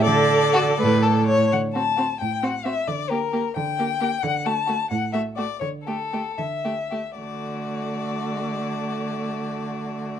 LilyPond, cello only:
\new Staff \with { instrumentName = "Cello" } { \clef bass \time 6/8 \key d \major \tempo 4. = 82 d4. a,4. | d4. a,4. | d4. d4. | d4. a,4. |
d4. d4. | d2.~ | d2. | }